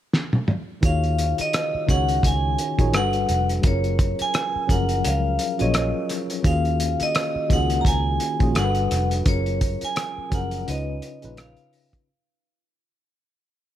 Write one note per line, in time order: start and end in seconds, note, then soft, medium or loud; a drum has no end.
0.14 snare medium
0.33 high tom medium
0.48 mid tom medium
0.81 1.33 D#2 medium
0.81 1.51 D#3 medium
0.81 1.52 D#4 medium
0.81 1.52 F4 medium
0.81 1.52 F#4 medium
0.81 1.53 G#4 medium
0.81 kick loud
0.81 closed hi-hat medium
0.85 1.53 C#5 medium
0.85 1.36 F5 medium
1.04 closed hi-hat soft
1.19 closed hi-hat medium
1.38 1.91 D#5 medium
1.38 muted fingered electric bass stroke soft
1.38 closed hi-hat soft
1.53 cross-stick loud
1.53 closed hi-hat medium
1.75 muted fingered electric bass stroke soft
1.87 2.20 C#2 medium
1.87 2.47 D#3 medium
1.87 2.48 C#4 medium
1.87 2.47 D#4 medium
1.87 2.48 F#4 medium
1.87 2.48 G#4 medium
1.87 2.49 C#5 medium
1.87 2.25 F#5 medium
1.87 kick medium
1.87 cross-stick soft
1.87 closed hi-hat medium
2.09 closed hi-hat soft
2.23 2.55 C#2 medium
2.23 2.97 G#5 medium
2.23 kick medium
2.23 closed hi-hat medium
2.58 closed hi-hat medium
2.78 2.94 A#1 medium
2.78 2.93 D#3 medium
2.78 2.93 D#4 medium
2.78 2.94 F4 medium
2.78 2.93 F#4 medium
2.78 2.94 G#4 medium
2.78 2.95 C#5 medium
2.78 kick medium
2.78 closed hi-hat soft
2.92 3.25 G1 medium
2.92 3.51 G3 medium
2.92 3.52 D4 medium
2.92 3.52 F#4 medium
2.92 3.53 A4 medium
2.92 3.53 B4 medium
2.92 cross-stick medium
2.92 closed hi-hat medium
2.96 3.47 F#5 medium
3.13 closed hi-hat soft
3.29 3.60 F1 medium
3.29 closed hi-hat medium
3.49 closed hi-hat soft
3.62 4.14 F#1 medium
3.62 4.32 F#3 medium
3.62 4.32 C#4 medium
3.62 4.33 F4 medium
3.62 4.33 G#4 medium
3.62 4.34 A#4 medium
3.62 kick loud
3.62 closed hi-hat medium
3.67 4.23 C#5 medium
3.84 closed hi-hat soft
3.99 kick medium
3.99 closed hi-hat medium
4.19 4.72 G#5 medium
4.19 muted fingered electric bass stroke soft
4.19 closed hi-hat soft
4.34 cross-stick loud
4.34 closed hi-hat medium
4.56 muted fingered electric bass stroke soft
4.67 5.01 F#1 medium
4.67 5.28 F3 medium
4.67 5.28 F#3 medium
4.67 5.28 C#4 medium
4.67 5.29 G#4 medium
4.67 5.29 A#4 medium
4.67 5.06 F#5 medium
4.67 kick medium
4.67 closed hi-hat medium
4.89 closed hi-hat soft
5.05 5.36 C#2 medium
5.05 5.62 F5 medium
5.05 closed hi-hat medium
5.39 closed hi-hat medium
5.58 5.92 A#1 medium
5.58 6.14 F#3 medium
5.58 6.15 C#4 medium
5.58 6.15 F4 medium
5.58 6.16 G#4 medium
5.58 6.16 C#5 medium
5.58 6.07 D#5 medium
5.58 closed hi-hat soft
5.74 cross-stick medium
5.74 closed hi-hat medium
6.09 cross-stick soft
6.09 closed hi-hat medium
6.30 closed hi-hat soft
6.43 6.95 D#2 loud
6.43 7.13 D#3 medium
6.43 7.13 A#3 medium
6.43 7.13 C#4 medium
6.43 7.14 F4 medium
6.43 7.14 F#4 medium
6.43 7.15 G#4 medium
6.43 7.03 F5 medium
6.43 kick loud
6.43 closed hi-hat medium
6.65 closed hi-hat soft
6.80 closed hi-hat medium
7.00 7.53 D#5 medium
7.00 muted fingered electric bass stroke soft
7.00 closed hi-hat soft
7.15 cross-stick loud
7.15 closed hi-hat medium
7.36 muted fingered electric bass stroke soft
7.49 7.82 C#2 medium
7.49 8.09 D#3 medium
7.49 8.09 A#3 medium
7.49 8.09 C#4 medium
7.49 8.10 F4 medium
7.49 8.10 F#4 medium
7.49 8.11 G#4 medium
7.49 kick medium
7.49 cross-stick soft
7.49 closed hi-hat medium
7.53 7.82 F#5 medium
7.70 closed hi-hat soft
7.81 7.86 A#5 medium
7.81 kick medium
7.85 8.17 C#2 medium
7.85 8.58 G#5 medium
7.85 closed hi-hat medium
8.20 closed hi-hat medium
8.39 8.54 A#1 medium
8.39 8.55 D#3 medium
8.39 8.55 A#3 medium
8.39 8.55 C#4 medium
8.39 8.56 F4 medium
8.39 8.55 F#4 medium
8.39 8.57 G#4 medium
8.39 kick medium
8.39 closed hi-hat soft
8.54 8.87 G1 medium
8.54 9.13 G3 medium
8.54 9.14 D4 medium
8.54 9.14 F#4 medium
8.54 9.15 A4 medium
8.54 8.64 A#4 medium
8.54 9.08 F#5 medium
8.54 cross-stick medium
8.54 closed hi-hat medium
8.64 9.19 B4 medium
8.75 closed hi-hat soft
8.91 9.23 F1 medium
8.91 cross-stick soft
8.91 closed hi-hat medium
9.11 closed hi-hat soft
9.25 9.76 F#1 medium
9.25 9.94 F#3 medium
9.25 9.95 C#4 medium
9.25 9.95 F4 medium
9.25 9.96 G#4 medium
9.25 9.96 A#4 medium
9.25 9.84 C#5 medium
9.25 kick loud
9.25 closed hi-hat medium
9.46 closed hi-hat soft
9.61 kick medium
9.61 closed hi-hat medium
9.81 10.34 G#5 loud
9.81 muted fingered electric bass stroke soft
9.81 closed hi-hat soft
9.96 cross-stick loud
9.96 closed hi-hat medium
10.18 muted fingered electric bass stroke soft
10.30 10.63 F#1 medium
10.30 10.67 F3 medium
10.30 10.66 F#3 medium
10.30 10.66 C#4 medium
10.30 10.67 G#4 medium
10.30 10.68 A#4 medium
10.30 kick medium
10.30 closed hi-hat medium
10.34 10.66 F#5 medium
10.51 closed hi-hat soft
10.66 10.99 C#2 medium
10.66 11.10 C#3 medium
10.66 11.10 C#4 medium
10.66 11.11 D#4 medium
10.66 11.11 F4 medium
10.66 11.12 B4 medium
10.66 11.41 D#5 medium
10.66 closed hi-hat medium
11.02 closed hi-hat medium
11.22 11.55 A#1 medium
11.22 11.77 C#3 medium
11.22 11.78 C#4 medium
11.22 11.78 D#4 medium
11.22 11.79 F4 medium
11.22 11.79 B4 medium
11.22 closed hi-hat soft
11.37 11.90 F5 medium
11.37 cross-stick medium
11.37 closed hi-hat medium
11.57 closed hi-hat soft
11.73 open hi-hat medium
11.93 kick medium
11.93 closed hi-hat soft